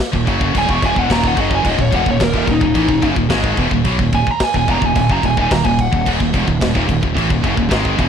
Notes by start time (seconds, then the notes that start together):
0.00 kick
0.12 D#1 D#2 A#2, kick
0.25 F#1 F#2 C#3 F#3, kick, crash
0.41 kick
0.53 D#1 D#2 A#2, kick, crash
0.58 G#5
0.67 E1 E2 B2 C#6, kick
0.81 D#1 D#2 A#2, kick, crash
0.86 G#5
0.95 E1 E2 B2 F#5, kick
1.09 D#1 D#2 A#2 D#3 A#5, kick, snare, crash
1.24 kick
1.28 F#5
1.36 F#1 F#2 C#3 F#3, kick, crash
1.40 D#5
1.51 kick
1.55 G#5
1.63 D#1 D#2 A#2 D#5, kick, crash
1.77 D#1 D#2 A#2 C#5, kick
1.91 E1 E2 B2, kick, crash
1.95 F#5
2.05 D#1 D#2 A#2, kick
2.11 C#5
2.20 D#1 D#2 A#2 A#4, kick, snare, crash
2.32 D#1 D#2 A#2, kick
2.46 D#1 D#2 A#2, kick, crash
2.52 D#4
2.60 D#1 D#2 A#2, kick
2.74 A1 A2 E3, kick, crash
2.87 D#1 D#2 A#2, kick
3.02 F#1 F#2 C#3, kick, crash
3.16 D#1 D#2 A#2, kick
3.30 G#1 G#2 D#3 G#3, kick, snare, crash
3.44 kick
3.57 E1 E2 B2, kick, crash
3.71 D#1 D#2 A#2, kick
3.85 B1 B2 F#3, kick, crash
3.99 D#1 D#2 A#2, kick
4.13 D#1 D#2 A#2 G#5, kick, crash
4.27 A#5, muted fingered electric bass stroke, muted distorted electric guitar stroke, kick
4.40 G#5, kick, snare, crash
4.54 D#1 D#2 A#2 G#5, kick
4.68 E1 E2 B2 A#5, kick, crash
4.82 D#1 D#2 A#2 G#5, kick
4.96 D#1 D#2 A#2 G#5, kick, crash
5.10 F#1 F#2 C#3 A#5, kick
5.23 D#1 D#2 A#2 G#5, kick, crash
5.37 D#1 D#2 A#2 G#5, kick
5.51 D#1 D#2 A#2 A#5, kick, snare, crash
5.64 D#1 D#2 A#2 G#5, kick
5.79 F#5, kick, crash
5.92 D#1 D#2 A#2, kick
6.06 D#1 D#2 A#2, kick, crash
6.20 D#1 D#2 A#2, kick
6.34 E1 E2 B2, kick, crash
6.47 D#1 D#2 A#2, kick
6.61 D#1 D#2 A#2, kick, snare, crash
6.75 D#1 D#2 A#2, kick
6.89 D#1 D#2 A#2, kick, crash
7.03 D#1 D#2 A#2, kick
7.17 A1 A2 E3, kick, crash
7.30 D#1 D#2 A#2, kick
7.44 F#1 F#2 C#3, kick, crash
7.57 D#1 D#2 A#2, kick
7.70 G#1 G#2 D#3 G#3, kick, snare, crash
7.85 kick
7.98 E1 E2 B2, kick, crash